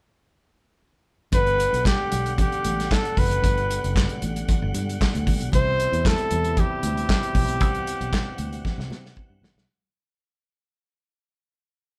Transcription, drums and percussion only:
1.32 kick, closed hi-hat, muted conga, low conga
1.47 closed hi-hat
1.58 closed hi-hat, muted conga
1.74 closed hi-hat
1.85 kick, snare, clap, muted conga, high conga
2.12 closed hi-hat, muted conga, high conga
2.26 closed hi-hat
2.38 kick, closed hi-hat, muted conga, low conga
2.52 closed hi-hat
2.64 closed hi-hat, muted conga, high conga
2.80 snare, closed hi-hat
2.91 kick, snare, clap, muted conga
3.05 closed hi-hat
3.17 kick, open hi-hat, muted conga, high conga, low conga
3.31 closed hi-hat
3.42 kick, closed hi-hat, low conga
3.57 closed hi-hat
3.70 closed hi-hat, muted conga
3.84 closed hi-hat
3.96 kick, snare, clap, muted conga, high conga
4.09 closed hi-hat
4.22 closed hi-hat, high conga
4.36 closed hi-hat
4.48 kick, closed hi-hat, low conga
4.74 closed hi-hat, high conga
4.89 closed hi-hat
5.01 kick, snare, clap, muted conga
5.15 closed hi-hat
5.27 kick, open hi-hat, muted conga, high conga, low conga
5.41 closed hi-hat
5.52 kick, closed hi-hat, muted conga, low conga
5.80 closed hi-hat
5.93 closed hi-hat
6.05 kick, snare, clap, muted conga, high conga
6.18 closed hi-hat
6.31 closed hi-hat, high conga
6.44 closed hi-hat
6.57 kick, closed hi-hat, low conga
6.83 closed hi-hat, high conga
6.97 closed hi-hat
7.09 kick, snare, clap, muted conga
7.23 closed hi-hat
7.35 kick, open hi-hat, muted conga, high conga, low conga
7.48 closed hi-hat
7.60 kick, closed hi-hat, muted conga, low conga
7.75 closed hi-hat
7.87 closed hi-hat, muted conga
8.01 closed hi-hat
8.13 kick, snare, clap, muted conga, high conga
8.38 closed hi-hat, muted conga, high conga
8.53 closed hi-hat
8.65 kick, snare, low conga
8.80 snare
8.90 snare, muted conga, high conga
9.06 snare
9.16 kick, muted conga
9.44 snare, high conga, low conga
9.58 snare

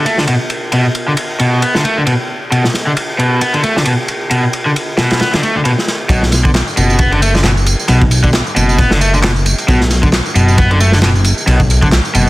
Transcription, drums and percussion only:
0.06 ride
0.18 snare
0.27 ride
0.50 ride
0.72 ride
0.95 ride
1.17 ride
1.40 ride
1.62 ride
1.75 snare
1.85 ride
2.07 ride
2.52 ride
2.64 snare
2.74 snare, ride
2.97 ride
3.19 ride
3.41 ride
3.54 ride
3.63 ride
3.77 snare
3.85 ride
4.08 ride
4.31 ride
4.53 ride
4.76 ride
4.97 snare, ride
5.11 snare, ride
5.19 snare, ride
5.33 snare, ride
5.43 ride
5.65 ride
5.78 snare
5.88 snare, ride
6.09 kick, ride, tambourine
6.23 snare
6.32 snare, ride, tambourine
6.45 kick
6.54 snare, clap, ride, tambourine
6.68 tambourine
6.77 ride, tambourine
6.90 tambourine
6.99 kick, ride, tambourine
7.12 ride
7.22 ride, tambourine
7.35 snare, tambourine
7.44 snare, clap, ride, tambourine
7.57 tambourine
7.66 ride, tambourine
7.79 tambourine
7.88 ride, tambourine
8.02 kick
8.11 ride, tambourine
8.24 kick
8.33 snare, clap, ride, tambourine
8.47 tambourine
8.56 ride, tambourine
8.69 tambourine
8.78 kick, ride, tambourine
8.91 snare
9.01 ride, tambourine
9.14 tambourine
9.23 snare, clap, ride, tambourine
9.36 tambourine
9.46 ride, tambourine
9.58 ride, tambourine
9.68 kick, ride, tambourine
9.81 snare
9.90 snare, ride, tambourine
10.03 kick, tambourine
10.13 snare, clap, ride, tambourine
10.26 tambourine
10.35 ride, tambourine
10.48 tambourine
10.58 kick, ride, tambourine
10.71 ride
10.80 ride, tambourine
10.92 snare, tambourine
11.02 snare, clap, ride, tambourine
11.15 tambourine
11.24 ride, tambourine
11.38 tambourine
11.47 ride, tambourine
11.60 kick, tambourine
11.70 ride, tambourine
11.83 kick, tambourine
11.92 snare, clap, ride, tambourine
12.05 tambourine
12.15 ride, tambourine

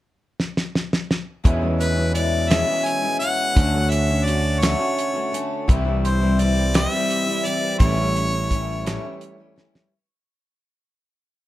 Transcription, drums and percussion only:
0.40 snare
0.57 snare
0.75 snare
0.93 snare
1.11 snare
1.45 kick, closed hi-hat
1.81 closed hi-hat
2.15 closed hi-hat
2.51 snare, closed hi-hat
2.86 closed hi-hat
3.22 closed hi-hat
3.57 kick, closed hi-hat
3.92 closed hi-hat
4.27 closed hi-hat
4.62 snare, closed hi-hat
4.99 closed hi-hat
5.34 closed hi-hat
5.69 kick, closed hi-hat
6.05 closed hi-hat
6.39 closed hi-hat
6.74 snare, closed hi-hat
7.10 closed hi-hat
7.45 closed hi-hat
7.80 kick, closed hi-hat
8.16 closed hi-hat
8.51 kick, closed hi-hat
8.86 snare, closed hi-hat
9.21 closed hi-hat
9.58 snare
9.75 snare

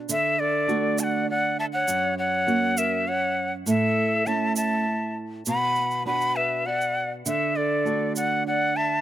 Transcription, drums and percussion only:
0.09 shaker
0.69 shaker
0.98 shaker
1.88 shaker
2.48 shaker
2.77 shaker
3.67 shaker
4.26 shaker
4.56 shaker
5.46 shaker
5.76 shaker
5.91 shaker
6.21 shaker
6.81 shaker
7.26 shaker
7.86 shaker
8.16 shaker

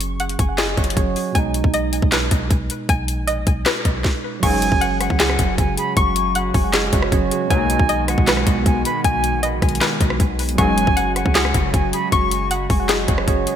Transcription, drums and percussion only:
0.01 closed hi-hat
0.20 closed hi-hat
0.29 closed hi-hat
0.39 kick, closed hi-hat
0.58 snare, clap, closed hi-hat
0.77 kick, closed hi-hat
0.84 closed hi-hat
0.90 closed hi-hat
0.97 kick, closed hi-hat
1.16 open hi-hat
1.35 kick, closed hi-hat
1.54 closed hi-hat
1.64 kick
1.74 closed hi-hat
1.93 closed hi-hat
2.02 kick
2.12 snare, clap, closed hi-hat
2.31 kick, closed hi-hat
2.51 kick, closed hi-hat
2.70 closed hi-hat
2.89 kick, closed hi-hat
3.08 closed hi-hat
3.28 closed hi-hat
3.47 kick, closed hi-hat
3.66 snare, clap, closed hi-hat
3.85 kick, closed hi-hat
4.04 kick, snare
4.43 kick, closed hi-hat, crash
4.62 closed hi-hat
4.72 kick
4.81 closed hi-hat
5.01 cross-stick, closed hi-hat
5.10 kick
5.20 snare, clap, closed hi-hat
5.29 cross-stick
5.39 kick, closed hi-hat
5.58 kick, closed hi-hat
5.78 closed hi-hat
5.97 kick, closed hi-hat
6.16 closed hi-hat
6.35 closed hi-hat
6.54 kick, open hi-hat
6.73 snare, clap, closed hi-hat
6.93 kick, closed hi-hat
7.02 cross-stick
7.12 kick, closed hi-hat
7.31 closed hi-hat
7.51 kick, closed hi-hat
7.70 closed hi-hat
7.79 kick
7.89 closed hi-hat
8.08 cross-stick, closed hi-hat
8.18 kick
8.27 snare, clap, closed hi-hat
8.37 cross-stick
8.47 kick, closed hi-hat
8.66 kick, closed hi-hat
8.85 closed hi-hat
9.04 kick, closed hi-hat
9.24 closed hi-hat
9.43 closed hi-hat
9.62 kick, cross-stick, closed hi-hat
9.69 closed hi-hat
9.75 closed hi-hat
9.81 snare, clap, closed hi-hat
10.01 kick, closed hi-hat
10.10 cross-stick
10.20 kick, closed hi-hat
10.39 closed hi-hat, open hi-hat
10.49 closed hi-hat
10.58 kick, closed hi-hat
10.78 closed hi-hat
10.87 kick
10.97 closed hi-hat
11.16 cross-stick, closed hi-hat
11.26 kick
11.35 snare, clap, closed hi-hat
11.45 cross-stick
11.54 kick, closed hi-hat
11.74 kick, closed hi-hat
11.93 closed hi-hat
12.12 kick, closed hi-hat
12.31 closed hi-hat
12.51 closed hi-hat
12.70 kick, open hi-hat
12.89 snare, clap, closed hi-hat
13.08 kick, closed hi-hat
13.18 cross-stick
13.28 kick, closed hi-hat
13.47 closed hi-hat

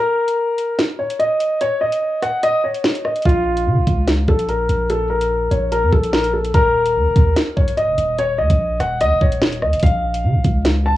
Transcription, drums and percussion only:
0.28 closed hi-hat
0.58 closed hi-hat
0.79 snare, closed hi-hat
1.10 closed hi-hat
1.20 closed hi-hat
1.40 closed hi-hat
1.61 closed hi-hat
1.92 closed hi-hat
2.23 cross-stick, closed hi-hat
2.43 closed hi-hat
2.75 closed hi-hat
2.84 snare
2.95 closed hi-hat
3.05 cross-stick
3.16 closed hi-hat
3.22 kick, closed hi-hat
3.29 closed hi-hat
3.57 closed hi-hat
3.87 kick, closed hi-hat
4.08 snare, closed hi-hat
4.28 kick
4.39 closed hi-hat
4.49 closed hi-hat
4.69 closed hi-hat
4.90 closed hi-hat
5.21 closed hi-hat
5.51 closed hi-hat
5.72 closed hi-hat
5.92 kick
6.03 closed hi-hat
6.13 snare
6.24 closed hi-hat
6.44 closed hi-hat
6.54 kick, closed hi-hat
6.86 closed hi-hat
7.16 kick, closed hi-hat
7.36 snare, closed hi-hat
7.57 kick
7.68 closed hi-hat
7.77 closed hi-hat
7.98 closed hi-hat
8.18 closed hi-hat
8.50 kick, closed hi-hat
8.80 cross-stick, closed hi-hat
9.01 closed hi-hat
9.21 kick
9.32 closed hi-hat
9.42 snare
9.53 closed hi-hat
9.62 cross-stick
9.73 closed hi-hat
9.80 closed hi-hat
9.83 kick, closed hi-hat
9.86 closed hi-hat
10.14 closed hi-hat
10.44 kick, closed hi-hat
10.65 snare, closed hi-hat

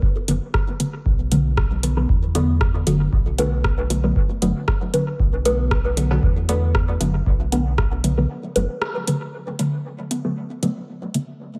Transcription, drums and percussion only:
0.02 kick
0.28 closed hi-hat
0.54 kick, cross-stick
0.80 closed hi-hat
1.06 kick
1.32 closed hi-hat
1.57 kick, cross-stick
1.83 closed hi-hat
2.09 kick
2.35 closed hi-hat
2.61 kick, cross-stick
2.87 closed hi-hat
3.13 kick
3.38 closed hi-hat
3.64 kick, cross-stick
3.90 closed hi-hat
4.16 kick
4.42 closed hi-hat
4.68 kick, cross-stick
4.94 closed hi-hat
5.20 kick
5.45 closed hi-hat
5.71 kick, cross-stick
5.97 closed hi-hat
6.23 kick
6.49 closed hi-hat
6.75 kick, cross-stick
7.01 closed hi-hat
7.26 kick
7.52 closed hi-hat
7.78 kick, cross-stick
8.04 closed hi-hat
8.56 closed hi-hat
8.82 cross-stick
9.07 closed hi-hat
9.59 closed hi-hat
10.11 closed hi-hat
10.63 closed hi-hat
11.14 closed hi-hat

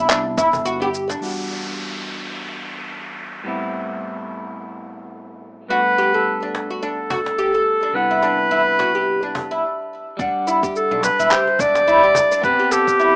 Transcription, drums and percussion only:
0.10 clap, shaker
0.38 kick, cajon slap, shaker
0.53 cajon bass, shaker
0.65 cajon slap, shaker
0.94 shaker
1.10 cajon slap, shaker
6.55 cajon slap
7.10 cajon bass
7.26 cajon slap
8.22 cajon slap
8.80 cajon slap
9.35 cajon bass, cajon slap
10.19 kick, shaker
10.47 shaker
10.63 kick, shaker
10.76 shaker
11.03 cajon slap, shaker
11.20 shaker
11.31 clap, shaker
11.47 cajon slap
11.59 cajon bass, kick, shaker
11.75 cajon slap, shaker
11.88 shaker
12.15 cajon bass, shaker
12.32 shaker
12.44 kick, shaker
12.71 cajon slap, shaker
12.87 kick, shaker
13.00 shaker

